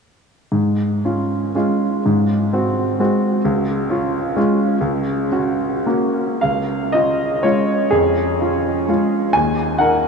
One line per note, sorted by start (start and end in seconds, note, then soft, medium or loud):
0.52 1.02 G#2 soft
1.05 1.51 C#4 soft
1.05 1.52 F4 soft
1.55 2.02 G#3 soft
1.55 2.02 C#4 soft
1.55 2.02 F4 soft
2.06 2.52 G#2 soft
2.53 2.96 C4 soft
2.53 2.96 F#4 soft
3.00 3.41 G#3 soft
3.00 3.41 C4 soft
3.00 3.41 F#4 soft
3.45 3.90 C#2 soft
3.90 4.32 C#4 soft
3.90 4.32 F4 soft
4.36 4.77 G#3 soft
4.36 4.77 C#4 soft
4.36 4.78 F4 soft
4.81 5.30 C#2 soft
5.32 5.81 C#4 soft
5.32 5.82 F#4 soft
5.86 6.38 A#3 soft
5.86 6.39 C#4 soft
5.86 6.39 F#4 soft
6.41 6.93 C#2 soft
6.41 6.93 F5 medium
6.92 7.40 C#4 soft
6.92 7.41 F4 soft
6.92 7.44 D#5 medium
7.43 7.88 G#3 soft
7.43 7.88 C#4 soft
7.43 7.88 F4 soft
7.43 7.91 C#5 medium
7.91 8.40 F2 soft
7.91 9.33 G#4 medium
8.40 8.85 C#4 soft
8.40 8.85 F4 soft
8.88 9.30 G#3 soft
8.88 9.30 C#4 soft
8.88 9.30 F4 soft
9.33 9.78 D#2 soft
9.33 9.79 G#5 medium
9.78 10.08 D#4 soft
9.78 10.08 A#4 soft
9.78 10.08 F#5 medium